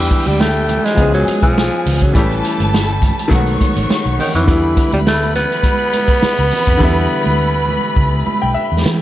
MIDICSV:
0, 0, Header, 1, 7, 480
1, 0, Start_track
1, 0, Tempo, 582524
1, 1768, Time_signature, 4, 2, 24, 8
1, 7431, End_track
2, 0, Start_track
2, 0, Title_t, "String section"
2, 0, Program_c, 0, 48
2, 0, Note_on_c, 0, 67, 82
2, 0, Note_on_c, 0, 79, 102
2, 791, Note_off_c, 0, 67, 0
2, 791, Note_off_c, 0, 79, 0
2, 808, Note_on_c, 0, 80, 91
2, 809, Note_on_c, 0, 68, 81
2, 1749, Note_off_c, 0, 80, 0
2, 1750, Note_off_c, 0, 68, 0
2, 1768, Note_on_c, 0, 69, 88
2, 1768, Note_on_c, 0, 81, 101
2, 2709, Note_off_c, 0, 69, 0
2, 2709, Note_off_c, 0, 81, 0
2, 2732, Note_on_c, 0, 85, 90
2, 2733, Note_on_c, 0, 73, 88
2, 3671, Note_off_c, 0, 73, 0
2, 3671, Note_off_c, 0, 85, 0
2, 3691, Note_on_c, 0, 83, 111
2, 3693, Note_on_c, 0, 71, 91
2, 7431, Note_off_c, 0, 71, 0
2, 7431, Note_off_c, 0, 83, 0
2, 7431, End_track
3, 0, Start_track
3, 0, Title_t, "Grand piano"
3, 0, Program_c, 1, 0
3, 0, Control_c, 1, 64, 127
3, 0, Note_on_c, 1, 52, 71
3, 0, Note_on_c, 1, 55, 61
3, 0, Note_on_c, 1, 59, 62
3, 0, Note_on_c, 1, 62, 63
3, 0, Note_on_c, 1, 67, 81
3, 772, Note_off_c, 1, 52, 0
3, 779, Note_on_c, 1, 53, 69
3, 780, Note_off_c, 1, 55, 0
3, 788, Note_off_c, 1, 59, 0
3, 794, Note_on_c, 1, 56, 62
3, 795, Note_off_c, 1, 62, 0
3, 803, Note_off_c, 1, 67, 0
3, 810, Note_on_c, 1, 59, 61
3, 820, Control_c, 1, 64, 0
3, 822, Note_on_c, 1, 61, 61
3, 837, Note_on_c, 1, 68, 72
3, 964, Control_c, 1, 64, 127
3, 1734, Note_off_c, 1, 53, 0
3, 1742, Note_off_c, 1, 56, 0
3, 1743, Note_on_c, 1, 52, 67
3, 1750, Note_off_c, 1, 59, 0
3, 1756, Note_off_c, 1, 61, 0
3, 1758, Note_on_c, 1, 55, 67
3, 1764, Note_off_c, 1, 68, 0
3, 1771, Note_on_c, 1, 57, 66
3, 1779, Control_c, 1, 64, 0
3, 1784, Note_on_c, 1, 61, 65
3, 1800, Note_on_c, 1, 67, 78
3, 1925, Control_c, 1, 64, 127
3, 2696, Note_off_c, 1, 52, 0
3, 2701, Note_on_c, 1, 51, 87
3, 2704, Note_off_c, 1, 55, 0
3, 2710, Note_off_c, 1, 57, 0
3, 2714, Note_on_c, 1, 54, 74
3, 2717, Note_off_c, 1, 61, 0
3, 2725, Note_off_c, 1, 67, 0
3, 2726, Note_on_c, 1, 57, 73
3, 2740, Control_c, 1, 64, 0
3, 2742, Note_on_c, 1, 59, 76
3, 2759, Note_on_c, 1, 66, 90
3, 2881, Control_c, 1, 64, 127
3, 3655, Note_off_c, 1, 51, 0
3, 3658, Note_on_c, 1, 50, 73
3, 3662, Note_off_c, 1, 54, 0
3, 3668, Note_off_c, 1, 57, 0
3, 3672, Note_on_c, 1, 52, 64
3, 3676, Note_off_c, 1, 59, 0
3, 3684, Note_off_c, 1, 66, 0
3, 3687, Note_on_c, 1, 55, 66
3, 3699, Control_c, 1, 64, 0
3, 3701, Note_on_c, 1, 59, 69
3, 3716, Note_on_c, 1, 64, 84
3, 3843, Control_c, 1, 64, 127
3, 5559, Note_off_c, 1, 50, 0
3, 5566, Note_off_c, 1, 52, 0
3, 5573, Note_off_c, 1, 55, 0
3, 5580, Note_off_c, 1, 59, 0
3, 5580, Note_on_c, 1, 50, 88
3, 5588, Note_off_c, 1, 64, 0
3, 5595, Note_on_c, 1, 52, 77
3, 5609, Note_on_c, 1, 55, 81
3, 5621, Note_on_c, 1, 59, 77
3, 5638, Note_on_c, 1, 64, 91
3, 6807, Note_on_c, 1, 83, 76
3, 6927, Note_off_c, 1, 83, 0
3, 6937, Note_on_c, 1, 79, 70
3, 7038, Note_off_c, 1, 79, 0
3, 7040, Note_on_c, 1, 76, 77
3, 7431, Note_off_c, 1, 50, 0
3, 7431, Note_off_c, 1, 52, 0
3, 7431, Note_off_c, 1, 55, 0
3, 7431, Note_off_c, 1, 59, 0
3, 7431, Note_off_c, 1, 64, 0
3, 7431, Note_off_c, 1, 76, 0
3, 7431, End_track
4, 0, Start_track
4, 0, Title_t, "Tenor saxophone"
4, 0, Program_c, 2, 66
4, 0, Note_on_c, 2, 52, 98
4, 226, Note_on_c, 2, 55, 100
4, 238, Note_off_c, 2, 52, 0
4, 334, Note_on_c, 2, 57, 111
4, 346, Note_off_c, 2, 55, 0
4, 696, Note_on_c, 2, 56, 104
4, 708, Note_off_c, 2, 57, 0
4, 935, Note_off_c, 2, 56, 0
4, 940, Note_on_c, 2, 54, 95
4, 1162, Note_off_c, 2, 54, 0
4, 1175, Note_on_c, 2, 53, 100
4, 1668, Note_on_c, 2, 54, 90
4, 1680, Note_off_c, 2, 53, 0
4, 1768, Note_off_c, 2, 54, 0
4, 1773, Note_on_c, 2, 52, 85
4, 2457, Note_off_c, 2, 52, 0
4, 3458, Note_on_c, 2, 51, 89
4, 3574, Note_off_c, 2, 51, 0
4, 3584, Note_on_c, 2, 52, 100
4, 4028, Note_off_c, 2, 52, 0
4, 4066, Note_on_c, 2, 55, 93
4, 4114, Note_off_c, 2, 55, 0
4, 4180, Note_on_c, 2, 57, 109
4, 4397, Note_off_c, 2, 57, 0
4, 4414, Note_on_c, 2, 59, 122
4, 7016, Note_off_c, 2, 59, 0
4, 7431, End_track
5, 0, Start_track
5, 0, Title_t, "Fingered electric bass"
5, 0, Program_c, 3, 33
5, 222, Note_on_c, 3, 38, 81
5, 639, Note_off_c, 3, 38, 0
5, 805, Note_on_c, 3, 37, 103
5, 1016, Note_off_c, 3, 37, 0
5, 1177, Note_on_c, 3, 35, 81
5, 1387, Note_off_c, 3, 35, 0
5, 1532, Note_on_c, 3, 37, 100
5, 1644, Note_off_c, 3, 37, 0
5, 1663, Note_on_c, 3, 49, 98
5, 1758, Note_off_c, 3, 49, 0
5, 1772, Note_on_c, 3, 33, 111
5, 1980, Note_off_c, 3, 33, 0
5, 2141, Note_on_c, 3, 31, 92
5, 2558, Note_off_c, 3, 31, 0
5, 2729, Note_on_c, 3, 35, 112
5, 2938, Note_off_c, 3, 35, 0
5, 3103, Note_on_c, 3, 33, 99
5, 3197, Note_off_c, 3, 33, 0
5, 3342, Note_on_c, 3, 35, 99
5, 3437, Note_off_c, 3, 35, 0
5, 3580, Note_on_c, 3, 41, 90
5, 3692, Note_off_c, 3, 41, 0
5, 3692, Note_on_c, 3, 40, 112
5, 3899, Note_off_c, 3, 40, 0
5, 4064, Note_on_c, 3, 38, 81
5, 4479, Note_off_c, 3, 38, 0
5, 5263, Note_on_c, 3, 37, 94
5, 5356, Note_off_c, 3, 37, 0
5, 5500, Note_on_c, 3, 41, 86
5, 5594, Note_off_c, 3, 41, 0
5, 5606, Note_on_c, 3, 40, 108
5, 5816, Note_off_c, 3, 40, 0
5, 5983, Note_on_c, 3, 38, 84
5, 6398, Note_off_c, 3, 38, 0
5, 6565, Note_on_c, 3, 37, 99
5, 6774, Note_off_c, 3, 37, 0
5, 6947, Note_on_c, 3, 35, 87
5, 7038, Note_off_c, 3, 35, 0
5, 7183, Note_on_c, 3, 40, 91
5, 7275, Note_off_c, 3, 40, 0
5, 7296, Note_on_c, 3, 52, 101
5, 7431, Note_off_c, 3, 52, 0
5, 7431, End_track
6, 0, Start_track
6, 0, Title_t, "Muted fingered electric bass strokes"
6, 5135, Note_on_c, 9, 29, 48
6, 5217, Note_off_c, 9, 29, 0
6, 6813, Note_on_c, 9, 29, 51
6, 6896, Note_off_c, 9, 29, 0
6, 7055, Note_on_c, 9, 29, 48
6, 7137, Note_off_c, 9, 29, 0
6, 7431, End_track
7, 0, Start_track
7, 0, Title_t, "Drums"
7, 83, Note_on_c, 9, 62, 36
7, 88, Note_on_c, 9, 42, 83
7, 89, Note_on_c, 9, 36, 102
7, 166, Note_off_c, 9, 62, 0
7, 170, Note_off_c, 9, 42, 0
7, 171, Note_off_c, 9, 36, 0
7, 212, Note_on_c, 9, 63, 82
7, 213, Note_on_c, 9, 42, 47
7, 295, Note_off_c, 9, 63, 0
7, 296, Note_off_c, 9, 42, 0
7, 335, Note_on_c, 9, 38, 111
7, 417, Note_off_c, 9, 38, 0
7, 568, Note_on_c, 9, 42, 81
7, 572, Note_on_c, 9, 62, 33
7, 572, Note_on_c, 9, 63, 73
7, 572, Note_on_c, 9, 64, 68
7, 650, Note_off_c, 9, 42, 0
7, 655, Note_off_c, 9, 62, 0
7, 655, Note_off_c, 9, 63, 0
7, 655, Note_off_c, 9, 64, 0
7, 704, Note_on_c, 9, 42, 59
7, 707, Note_on_c, 9, 38, 36
7, 786, Note_off_c, 9, 42, 0
7, 789, Note_off_c, 9, 38, 0
7, 804, Note_on_c, 9, 36, 91
7, 804, Note_on_c, 9, 42, 88
7, 811, Note_on_c, 9, 62, 31
7, 811, Note_on_c, 9, 63, 48
7, 886, Note_off_c, 9, 36, 0
7, 886, Note_off_c, 9, 42, 0
7, 894, Note_off_c, 9, 62, 0
7, 894, Note_off_c, 9, 63, 0
7, 937, Note_on_c, 9, 42, 38
7, 1019, Note_off_c, 9, 42, 0
7, 1053, Note_on_c, 9, 42, 83
7, 1057, Note_on_c, 9, 63, 70
7, 1135, Note_off_c, 9, 42, 0
7, 1139, Note_off_c, 9, 63, 0
7, 1175, Note_on_c, 9, 36, 100
7, 1180, Note_on_c, 9, 42, 63
7, 1257, Note_off_c, 9, 36, 0
7, 1262, Note_off_c, 9, 42, 0
7, 1299, Note_on_c, 9, 38, 111
7, 1382, Note_off_c, 9, 38, 0
7, 1535, Note_on_c, 9, 46, 85
7, 1536, Note_on_c, 9, 62, 39
7, 1536, Note_on_c, 9, 64, 85
7, 1618, Note_off_c, 9, 46, 0
7, 1618, Note_off_c, 9, 62, 0
7, 1618, Note_off_c, 9, 64, 0
7, 1663, Note_on_c, 9, 36, 89
7, 1672, Note_on_c, 9, 42, 57
7, 1746, Note_off_c, 9, 36, 0
7, 1755, Note_off_c, 9, 42, 0
7, 1765, Note_on_c, 9, 62, 39
7, 1772, Note_on_c, 9, 36, 127
7, 1776, Note_on_c, 9, 42, 91
7, 1847, Note_off_c, 9, 62, 0
7, 1854, Note_off_c, 9, 36, 0
7, 1858, Note_off_c, 9, 42, 0
7, 1908, Note_on_c, 9, 42, 38
7, 1991, Note_off_c, 9, 42, 0
7, 2015, Note_on_c, 9, 42, 81
7, 2098, Note_off_c, 9, 42, 0
7, 2128, Note_on_c, 9, 63, 85
7, 2141, Note_on_c, 9, 42, 49
7, 2210, Note_off_c, 9, 63, 0
7, 2224, Note_off_c, 9, 42, 0
7, 2252, Note_on_c, 9, 62, 38
7, 2261, Note_on_c, 9, 38, 112
7, 2335, Note_off_c, 9, 62, 0
7, 2343, Note_off_c, 9, 38, 0
7, 2483, Note_on_c, 9, 62, 32
7, 2483, Note_on_c, 9, 63, 73
7, 2483, Note_on_c, 9, 64, 68
7, 2489, Note_on_c, 9, 36, 99
7, 2492, Note_on_c, 9, 42, 83
7, 2566, Note_off_c, 9, 62, 0
7, 2566, Note_off_c, 9, 63, 0
7, 2566, Note_off_c, 9, 64, 0
7, 2571, Note_off_c, 9, 36, 0
7, 2575, Note_off_c, 9, 42, 0
7, 2629, Note_on_c, 9, 42, 61
7, 2712, Note_off_c, 9, 42, 0
7, 2725, Note_on_c, 9, 36, 92
7, 2727, Note_on_c, 9, 63, 48
7, 2729, Note_on_c, 9, 42, 93
7, 2808, Note_off_c, 9, 36, 0
7, 2810, Note_off_c, 9, 63, 0
7, 2811, Note_off_c, 9, 42, 0
7, 2859, Note_on_c, 9, 42, 36
7, 2941, Note_off_c, 9, 42, 0
7, 2969, Note_on_c, 9, 62, 32
7, 2969, Note_on_c, 9, 63, 77
7, 2973, Note_on_c, 9, 36, 89
7, 2974, Note_on_c, 9, 42, 86
7, 3052, Note_off_c, 9, 62, 0
7, 3052, Note_off_c, 9, 63, 0
7, 3055, Note_off_c, 9, 36, 0
7, 3056, Note_off_c, 9, 42, 0
7, 3102, Note_on_c, 9, 42, 64
7, 3184, Note_off_c, 9, 42, 0
7, 3217, Note_on_c, 9, 38, 117
7, 3299, Note_off_c, 9, 38, 0
7, 3345, Note_on_c, 9, 42, 38
7, 3427, Note_off_c, 9, 42, 0
7, 3453, Note_on_c, 9, 62, 39
7, 3453, Note_on_c, 9, 64, 90
7, 3457, Note_on_c, 9, 46, 84
7, 3535, Note_off_c, 9, 62, 0
7, 3535, Note_off_c, 9, 64, 0
7, 3539, Note_off_c, 9, 46, 0
7, 3593, Note_on_c, 9, 42, 58
7, 3675, Note_off_c, 9, 42, 0
7, 3684, Note_on_c, 9, 62, 37
7, 3691, Note_on_c, 9, 36, 124
7, 3694, Note_on_c, 9, 42, 96
7, 3767, Note_off_c, 9, 62, 0
7, 3773, Note_off_c, 9, 36, 0
7, 3776, Note_off_c, 9, 42, 0
7, 3922, Note_on_c, 9, 62, 37
7, 3929, Note_on_c, 9, 36, 102
7, 3929, Note_on_c, 9, 42, 86
7, 4005, Note_off_c, 9, 62, 0
7, 4012, Note_off_c, 9, 36, 0
7, 4012, Note_off_c, 9, 42, 0
7, 4052, Note_on_c, 9, 63, 79
7, 4056, Note_on_c, 9, 42, 48
7, 4135, Note_off_c, 9, 63, 0
7, 4139, Note_off_c, 9, 42, 0
7, 4175, Note_on_c, 9, 38, 116
7, 4175, Note_on_c, 9, 62, 38
7, 4257, Note_off_c, 9, 62, 0
7, 4258, Note_off_c, 9, 38, 0
7, 4296, Note_on_c, 9, 42, 39
7, 4379, Note_off_c, 9, 42, 0
7, 4410, Note_on_c, 9, 62, 30
7, 4410, Note_on_c, 9, 63, 70
7, 4410, Note_on_c, 9, 64, 68
7, 4411, Note_on_c, 9, 42, 78
7, 4493, Note_off_c, 9, 62, 0
7, 4493, Note_off_c, 9, 63, 0
7, 4493, Note_off_c, 9, 64, 0
7, 4494, Note_off_c, 9, 42, 0
7, 4546, Note_on_c, 9, 42, 57
7, 4628, Note_off_c, 9, 42, 0
7, 4642, Note_on_c, 9, 36, 97
7, 4643, Note_on_c, 9, 42, 91
7, 4649, Note_on_c, 9, 62, 31
7, 4649, Note_on_c, 9, 63, 47
7, 4725, Note_off_c, 9, 36, 0
7, 4726, Note_off_c, 9, 42, 0
7, 4732, Note_off_c, 9, 62, 0
7, 4732, Note_off_c, 9, 63, 0
7, 4889, Note_on_c, 9, 42, 81
7, 4893, Note_on_c, 9, 63, 72
7, 4971, Note_off_c, 9, 42, 0
7, 4976, Note_off_c, 9, 63, 0
7, 5011, Note_on_c, 9, 36, 98
7, 5014, Note_on_c, 9, 42, 64
7, 5093, Note_off_c, 9, 36, 0
7, 5096, Note_off_c, 9, 42, 0
7, 5128, Note_on_c, 9, 38, 116
7, 5211, Note_off_c, 9, 38, 0
7, 5256, Note_on_c, 9, 42, 39
7, 5339, Note_off_c, 9, 42, 0
7, 5365, Note_on_c, 9, 46, 90
7, 5376, Note_on_c, 9, 64, 87
7, 5448, Note_off_c, 9, 46, 0
7, 5459, Note_off_c, 9, 64, 0
7, 5498, Note_on_c, 9, 36, 91
7, 5504, Note_on_c, 9, 42, 57
7, 5581, Note_off_c, 9, 36, 0
7, 5586, Note_off_c, 9, 42, 0
7, 5606, Note_on_c, 9, 36, 126
7, 5606, Note_on_c, 9, 64, 83
7, 5688, Note_off_c, 9, 64, 0
7, 5689, Note_off_c, 9, 36, 0
7, 5968, Note_on_c, 9, 63, 81
7, 6050, Note_off_c, 9, 63, 0
7, 6331, Note_on_c, 9, 63, 68
7, 6331, Note_on_c, 9, 64, 70
7, 6414, Note_off_c, 9, 63, 0
7, 6414, Note_off_c, 9, 64, 0
7, 6563, Note_on_c, 9, 36, 88
7, 6572, Note_on_c, 9, 63, 47
7, 6645, Note_off_c, 9, 36, 0
7, 6655, Note_off_c, 9, 63, 0
7, 6811, Note_on_c, 9, 62, 34
7, 6811, Note_on_c, 9, 63, 72
7, 6894, Note_off_c, 9, 62, 0
7, 6894, Note_off_c, 9, 63, 0
7, 7044, Note_on_c, 9, 62, 29
7, 7126, Note_off_c, 9, 62, 0
7, 7296, Note_on_c, 9, 62, 39
7, 7296, Note_on_c, 9, 64, 86
7, 7299, Note_on_c, 9, 38, 117
7, 7378, Note_off_c, 9, 62, 0
7, 7378, Note_off_c, 9, 64, 0
7, 7381, Note_off_c, 9, 38, 0
7, 7431, End_track
0, 0, End_of_file